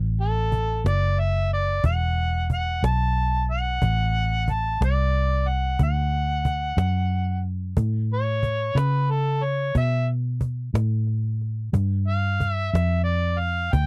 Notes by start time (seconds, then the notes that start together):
Already playing: A1
0.20 A4, cajon slap
0.52 cajon bass
0.84 F#1 D5, cajon slap
1.18 E5, cajon slap
1.51 D5, cajon slap
1.84 E1 F#5, cajon bass
2.17 cajon slap
2.50 F#5, cajon bass
2.83 B1 A5, cajon slap
3.16 cajon slap
3.49 F#5, cajon slap
3.82 A1, cajon bass
4.15 cajon slap
4.48 A5, cajon bass
4.81 C2 D5, cajon slap
5.13 cajon slap
5.46 F#5, cajon slap
5.79 D2, cajon bass
5.83 F#5
6.13 cajon slap
6.45 cajon bass
6.77 F#2, cajon slap
7.10 cajon slap
7.43 cajon slap
7.77 A2, cajon bass
8.10 C#5, cajon slap
8.43 cajon bass
8.75 C#3 B4, cajon slap
9.09 A4, cajon slap
9.43 C#5, cajon slap
9.75 B2 E5, cajon bass
10.08 cajon slap
10.41 cajon bass
10.74 A2, cajon slap
11.07 cajon slap
11.41 cajon slap
11.73 G2, cajon bass
12.08 F5, cajon slap
12.40 cajon bass
12.51 E5
12.71 F2 E5, cajon slap
13.04 D5, cajon slap
13.39 F5, cajon slap
13.73 D2 G5, cajon bass